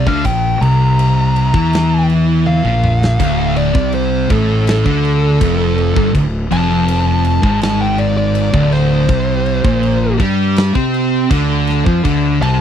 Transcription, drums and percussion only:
0.07 kick
0.25 kick, crash
0.62 crash
0.99 crash
1.36 crash
1.54 kick
1.73 snare, crash
2.10 crash
2.46 high tom
2.65 mid tom
2.84 mid tom
3.04 snare
3.20 kick, splash, crash
3.56 crash
3.75 kick
3.92 crash
4.30 kick, crash
4.67 snare, crash
4.86 kick
5.05 crash
5.41 kick, crash
5.78 crash
5.96 kick
6.15 kick, crash
6.51 crash
6.88 crash
7.25 crash
7.43 kick
7.61 snare, crash
7.98 crash
8.35 crash
8.54 kick
8.72 snare, crash
9.09 kick, crash
9.46 crash
9.65 kick
9.83 crash
10.20 kick, crash
10.56 snare, crash
10.75 kick
10.94 crash
11.30 kick, crash
11.67 snare, crash
11.86 kick
12.05 kick, crash
12.42 crash

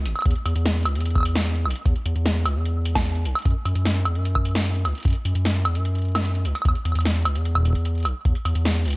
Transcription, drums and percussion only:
0.05 closed hi-hat
0.15 closed hi-hat, high woodblock
0.19 closed hi-hat, high woodblock
0.22 kick, closed hi-hat, high woodblock
0.30 closed hi-hat
0.35 closed hi-hat
0.45 closed hi-hat, high woodblock
0.55 closed hi-hat
0.65 snare, closed hi-hat
0.75 closed hi-hat
0.78 closed hi-hat
0.80 closed hi-hat
0.83 closed hi-hat
0.85 closed hi-hat, high woodblock
0.95 closed hi-hat
1.00 closed hi-hat
1.05 closed hi-hat
1.10 closed hi-hat
1.15 kick, closed hi-hat, high woodblock
1.18 high woodblock
1.20 high woodblock
1.23 closed hi-hat, high woodblock
1.35 snare
1.45 closed hi-hat
1.55 closed hi-hat
1.65 high woodblock
1.70 closed hi-hat
1.75 closed hi-hat
1.85 kick, closed hi-hat
1.95 closed hi-hat
2.05 closed hi-hat
2.15 closed hi-hat
2.25 snare, closed hi-hat
2.35 closed hi-hat
2.45 closed hi-hat, high woodblock
2.65 closed hi-hat
2.85 closed hi-hat
2.95 kick, snare, closed hi-hat, high woodblock
3.05 closed hi-hat
3.15 closed hi-hat
3.25 closed hi-hat
3.35 closed hi-hat, high woodblock
3.39 closed hi-hat
3.42 closed hi-hat
3.45 kick, closed hi-hat
3.65 closed hi-hat, high woodblock
3.75 closed hi-hat
3.85 snare, closed hi-hat
3.95 closed hi-hat
4.05 closed hi-hat, high woodblock
4.15 closed hi-hat
4.25 closed hi-hat
4.35 kick, high woodblock
4.45 closed hi-hat
4.55 snare, closed hi-hat
4.65 closed hi-hat
4.75 closed hi-hat
4.85 closed hi-hat, high woodblock
4.95 closed hi-hat
4.98 closed hi-hat
5.00 closed hi-hat
5.03 kick, closed hi-hat
5.05 closed hi-hat
5.08 closed hi-hat
5.10 closed hi-hat
5.13 closed hi-hat
5.15 closed hi-hat
5.25 closed hi-hat
5.35 closed hi-hat
5.45 snare, closed hi-hat
5.55 closed hi-hat
5.65 closed hi-hat, high woodblock
5.75 closed hi-hat
5.85 closed hi-hat
5.95 closed hi-hat
5.99 closed hi-hat
6.02 closed hi-hat
6.05 closed hi-hat
6.09 closed hi-hat
6.12 snare, closed hi-hat
6.15 closed hi-hat, high woodblock
6.25 closed hi-hat
6.35 closed hi-hat
6.45 closed hi-hat
6.55 closed hi-hat, high woodblock
6.62 kick, closed hi-hat, high woodblock
6.69 high woodblock
6.75 closed hi-hat
6.85 closed hi-hat, high woodblock
6.92 closed hi-hat, high woodblock
6.99 closed hi-hat, high woodblock
7.05 snare, closed hi-hat
7.10 closed hi-hat
7.15 closed hi-hat
7.19 closed hi-hat
7.22 closed hi-hat
7.25 closed hi-hat, high woodblock
7.35 closed hi-hat
7.45 closed hi-hat
7.55 kick, closed hi-hat, high woodblock
7.58 kick
7.60 kick
7.63 kick
7.65 kick, closed hi-hat
7.68 kick
7.70 kick
7.73 kick, closed hi-hat
7.85 closed hi-hat
7.95 closed hi-hat
7.98 closed hi-hat
8.00 closed hi-hat
8.03 closed hi-hat
8.05 closed hi-hat, high woodblock
8.25 kick, closed hi-hat
8.35 closed hi-hat
8.45 closed hi-hat, high woodblock
8.55 closed hi-hat
8.65 snare, closed hi-hat
8.75 closed hi-hat
8.85 closed hi-hat
8.88 closed hi-hat
8.90 closed hi-hat
8.93 closed hi-hat

